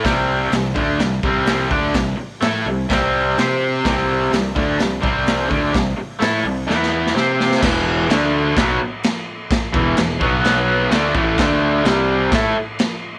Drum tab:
CC |----------------|----------------|----------------|----------------|
HH |o---o---o---o---|o---o---o---o---|o---o---o---o---|o---o-----------|
SD |o---o---o---o---|o---o---o---o---|o---o---o---o---|o---o---oo-oo-oo|
BD |o-----o---o---o-|o-------o-------|o-----o---o---o-|o---------------|

CC |x---x---x---x---|x---x---x---x---|x---x---x---x---|
HH |----------------|----------------|----------------|
SD |o---o---o---o---|o---o---o---o---|o---o---o---o---|
BD |o-------o-------|o-o---o-------o-|o-------o-------|